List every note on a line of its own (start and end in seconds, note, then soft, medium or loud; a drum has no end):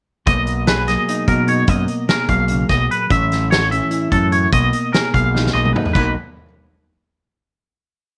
0.26 0.95 B1 medium
0.26 1.27 B2 medium
0.26 0.89 A#3 medium
0.26 0.67 D#5 medium
0.26 kick loud
0.26 closed hi-hat medium
0.47 closed hi-hat medium
0.67 1.66 G#4 medium
0.67 0.87 B4 medium
0.67 snare medium
0.67 closed hi-hat medium
0.88 2.13 F#3 medium
0.88 1.28 A#3 medium
0.88 1.28 D#5 medium
0.88 snare soft
0.88 closed hi-hat medium
1.08 1.46 D#4 medium
1.08 closed hi-hat medium
1.28 1.68 F#2 medium
1.28 1.62 B2 medium
1.28 1.66 A#3 medium
1.28 1.48 A#4 medium
1.28 kick medium
1.28 closed hi-hat medium
1.48 1.65 D#4 medium
1.48 1.69 C#5 medium
1.48 closed hi-hat medium
1.67 1.85 F#2 loud
1.67 2.48 B2 medium
1.67 2.29 A#3 medium
1.67 2.09 D#5 medium
1.67 kick loud
1.67 closed hi-hat medium
1.88 closed hi-hat medium
2.09 3.08 G#4 medium
2.09 2.29 A#4 medium
2.09 snare loud
2.09 closed hi-hat medium
2.29 2.63 B1 medium
2.29 3.72 F#3 medium
2.29 3.08 A#3 medium
2.29 2.69 F5 medium
2.29 kick medium
2.29 closed hi-hat medium
2.48 2.69 C#3 medium
2.48 closed hi-hat medium
2.69 2.87 B1 medium
2.69 2.89 B2 medium
2.69 2.89 D#5 medium
2.69 kick medium
2.69 snare soft
2.69 closed hi-hat medium
2.90 3.10 A#2 medium
2.90 3.10 B4 medium
2.90 closed hi-hat medium
3.10 3.80 A1 medium
3.10 4.10 A2 medium
3.10 3.71 C#4 medium
3.10 3.51 E5 medium
3.10 kick loud
3.10 closed hi-hat medium
3.32 snare soft
3.32 closed hi-hat medium
3.51 3.62 F#4 medium
3.51 3.71 C#5 medium
3.51 snare loud
3.51 closed hi-hat medium
3.62 4.52 A4 soft
3.71 4.53 E3 medium
3.71 4.11 C#4 medium
3.71 4.12 E5 medium
3.71 closed hi-hat medium
3.91 4.31 E4 medium
3.91 closed hi-hat medium
4.11 4.46 F#2 medium
4.11 4.49 A2 medium
4.11 4.50 C#4 medium
4.11 4.32 A4 medium
4.11 kick medium
4.11 closed hi-hat medium
4.32 4.50 E4 medium
4.32 4.52 C#5 medium
4.32 closed hi-hat medium
4.52 4.70 B1 medium
4.52 5.55 B2 medium
4.52 5.14 A#3 medium
4.52 4.93 D#5 medium
4.52 kick loud
4.52 closed hi-hat medium
4.73 closed hi-hat medium
4.93 5.93 G#4 medium
4.93 5.13 A#4 medium
4.93 snare loud
4.93 closed hi-hat medium
5.14 5.48 B1 medium
5.14 5.93 F#3 medium
5.14 5.54 A#3 medium
5.14 5.53 F5 medium
5.14 kick medium
5.14 closed hi-hat medium
5.34 5.74 D#4 medium
5.34 snare medium
5.47 snare medium
5.53 5.72 B1 medium
5.53 5.96 F#2 medium
5.53 5.93 A#3 medium
5.53 5.73 D#5 medium
5.65 mid tom medium
5.73 5.93 D#4 medium
5.73 5.92 B4 medium
5.73 mid tom medium
5.85 floor tom medium
5.93 6.14 B1 medium
5.93 6.13 B2 medium
5.93 6.13 F#3 medium
5.93 6.14 A#3 medium
5.93 6.14 D#4 medium
5.93 6.13 B4 medium
5.93 kick medium
5.93 crash medium
5.98 6.15 A#4 medium